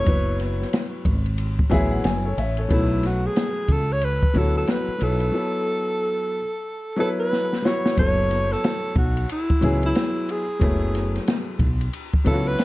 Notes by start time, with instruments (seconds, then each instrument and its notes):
Already playing: alto saxophone C#5
0.05 fretless electric bass F#1, upright piano F#3 B3 E4 B4, kick, ride
0.40 snare, ride
0.62 snare
0.73 snare, hi-hat pedal, ride
1.05 fretless electric bass G#1, kick, ride
1.26 ride
1.38 ride
1.59 kick
1.70 fretless electric bass A1, upright piano F#3 B3 E4 G#4 E5, kick, snare, ride
1.92 upright piano F#5
2.04 fretless electric bass F#1, upright piano G#5, snare, hi-hat pedal, ride
2.25 upright piano A4 C#5
2.37 fretless electric bass A1, upright piano C#5 E5, ride
2.57 upright piano A4 C#5, ride
2.68 fretless electric bass B1, upright piano F#3 A3 B3 E4, kick, ride
2.74 alto saxophone E4
3.03 alto saxophone F#4, snare, ride
3.26 alto saxophone G#4
3.36 snare, hi-hat pedal, ride
3.68 fretless electric bass C#2, alto saxophone A4, kick, ride
3.93 alto saxophone C#5
4.01 alto saxophone B4, ride
4.23 kick
4.33 fretless electric bass D2, upright piano F#3 B3 E4 F#4, kick, snare, ride
4.38 alto saxophone A4
4.58 alto saxophone A4
4.67 alto saxophone B4, snare, hi-hat pedal, ride
4.88 muted fretless electric bass stroke
4.98 fretless electric bass B1, upright piano F#3 B3 E4 B4, ride
5.03 alto saxophone A4
5.20 ride
5.32 upright piano F#3 B3 E4 A4
6.96 upright piano F#3 B3 E4 B4, alto saxophone A4
7.20 alto saxophone B4
7.33 snare
7.53 snare
7.62 upright piano F#3 B3 E4 F#4, alto saxophone C#5, snare
7.86 snare
7.96 fretless electric bass F#1, upright piano F#3 B3 E4 A4, alto saxophone C#5, kick, ride
8.31 snare, ride
8.52 alto saxophone A4, snare
8.64 snare, hi-hat pedal, ride
8.96 fretless electric bass B1, alto saxophone F#4, kick, ride
9.17 ride
9.29 alto saxophone E4, ride
9.50 kick
9.61 fretless electric bass C#2, upright piano F#3 B3 E4 G#4, kick, ride
9.83 alto saxophone E4, ride
9.95 snare, hi-hat pedal, ride
10.29 alto saxophone G#4, ride
10.59 fretless electric bass F#1, upright piano F#3 A3 B3 E4, kick, ride
10.95 snare, ride
11.16 snare, ride
11.27 snare, hi-hat pedal, ride
11.59 fretless electric bass B1, kick, ride
11.81 ride
11.93 ride
12.14 kick
12.24 fretless electric bass C#2, upright piano F#3 B3 E4 F4, alto saxophone A4, kick, snare, ride
12.34 upright piano F#4
12.47 alto saxophone B4
12.58 snare, hi-hat pedal, ride